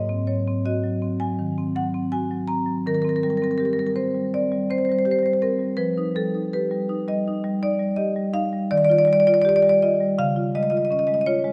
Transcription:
Already playing: G#2 D#5
0.09 C4
0.27 F#3 C#5
0.47 C4
0.66 F#4 D#5
0.84 F#3
1.02 C4
1.20 F#3 G#5
1.39 D#3
1.58 C4
1.76 F#3 F#5
1.94 C4
2.12 F#4 G#5
2.31 F#3
2.48 C4 A#5
2.66 F#3
2.87 D#3 A#4
2.94 A#4
3.02 C4 A#4
3.09 A#4
3.16 A#4
3.23 G3 A#4
3.30 A#4
3.37 A#4
3.42 C4 A#4
3.51 A#4
3.58 G4 A#4
3.65 A#4
3.73 A#4
3.77 G3 A#4
3.86 A#4
3.96 C4 C5
4.14 G3
4.34 C4 D5
4.52 G3
4.70 C4 C5
4.78 C5
4.85 C5
4.89 G3 C5
4.99 C5
5.05 G4 C5
5.11 C5
5.19 C5
5.23 G3 C5
5.33 C5
5.42 C4 A#4
5.59 G3
5.77 F3 B4
5.98 D#4
6.15 G3 A4
6.35 D#4
6.53 G4 B4
6.71 G3
6.89 D#4
7.08 G3 D#5
7.28 D#4
7.44 G3
7.62 D#4 D5
7.79 G3
7.96 G4 D#5
8.16 G3
8.33 D#4 F5
8.53 G3
8.71 D#3 D5
8.78 D5
8.85 D5
8.90 F4 D5
8.98 D5
9.05 G3 D5
9.13 D5
9.20 D5
9.27 F4 D5
9.34 D5
9.42 G4 D5
9.49 D5
9.56 D5
9.62 G3 D5
9.69 D5
9.82 F4 D#5
10.00 G3
10.18 C#3 F5
10.36 F4
10.55 G#3 D#5
10.63 D#5
10.70 F4 D#5
10.77 D#5
10.85 D#5
10.91 C#4 D#5
10.99 D#5
11.07 G#3 D#5
11.14 D#5
11.21 D#5
11.26 F4 C#5
11.44 G#3

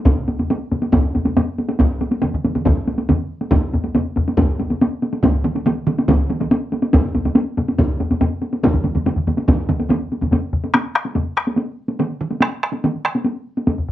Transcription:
0.05 taiko, taiko low-mid, taiko high
0.18 taiko low-mid
0.28 taiko low-mid, taiko high
0.39 taiko low-mid, taiko high
0.50 taiko high
0.72 taiko low-mid, taiko high
0.82 taiko high
0.92 taiko, taiko low-mid, taiko high
1.15 taiko low-mid, taiko high
1.25 taiko low-mid, taiko high
1.37 taiko low-mid, taiko high
1.58 taiko high
1.69 taiko high
1.79 taiko, taiko high
2.01 taiko high
2.12 taiko high
2.22 taiko low-mid, taiko mid, taiko high
2.34 taiko low-mid, taiko mid
2.45 taiko low-mid, taiko mid, taiko high
2.55 taiko low-mid, taiko mid, taiko high
2.66 taiko, taiko low-mid, taiko mid, taiko high
2.88 taiko high
2.98 taiko high
3.09 taiko low-mid, taiko mid, taiko high
3.41 taiko high
3.51 taiko, taiko low-mid, taiko high
3.74 taiko low-mid, taiko high
3.84 taiko high
3.95 taiko low-mid, taiko high
4.16 taiko low-mid, taiko high
4.28 taiko high
4.37 taiko, taiko low-mid, taiko high
4.60 taiko low-mid, taiko high
4.70 taiko low-mid, taiko high
4.82 taiko high
5.02 taiko high
5.13 taiko high
5.23 taiko, taiko mid, taiko high
5.44 taiko mid, taiko high
5.56 taiko high
5.66 taiko mid, taiko high
5.87 taiko mid, taiko high
5.98 taiko high
6.09 taiko, taiko mid, taiko high
6.30 taiko mid, taiko high
6.41 taiko mid, taiko high
6.51 taiko high
6.72 taiko high
6.82 taiko high
6.93 taiko, taiko low-mid, taiko high
7.04 taiko low-mid
7.15 taiko low-mid, taiko high
7.25 taiko low-mid, taiko high
7.35 taiko high
7.57 taiko low-mid, taiko high
7.68 taiko high
7.78 taiko, taiko low-mid, taiko high
8.00 taiko low-mid, taiko high
8.11 taiko low-mid, taiko high
8.21 taiko low-mid, taiko high
8.42 taiko high
8.53 taiko high
8.63 taiko, taiko low-mid, taiko mid, taiko high
8.74 taiko low-mid, taiko mid
8.84 taiko low-mid, taiko mid, taiko high
8.95 taiko low-mid, taiko mid, taiko high
9.06 taiko low-mid, taiko mid, taiko high
9.16 taiko low-mid, taiko mid
9.27 taiko low-mid, taiko mid, taiko high
9.38 taiko high
9.48 taiko, taiko low-mid, taiko mid, taiko high
9.69 taiko low-mid, taiko mid, taiko high
9.80 taiko high
9.89 taiko low-mid, taiko mid, taiko high
10.12 taiko high
10.21 taiko low-mid, taiko mid, taiko high
10.32 taiko low-mid, taiko high
10.53 taiko low-mid
10.64 taiko high
10.74 taiko rim, taiko high
10.95 taiko rim
11.05 taiko high
11.15 taiko low-mid, taiko high
11.37 taiko rim
11.47 taiko high
11.58 taiko high
11.88 taiko high
12.00 taiko mid, taiko high
12.21 taiko mid
12.31 taiko high
12.40 taiko rim, taiko high
12.63 taiko rim
12.73 taiko high
12.84 taiko mid, taiko high
13.05 taiko rim
13.15 taiko high
13.25 taiko high
13.57 taiko high
13.67 taiko low-mid, taiko high
13.78 taiko low-mid
13.89 taiko low-mid

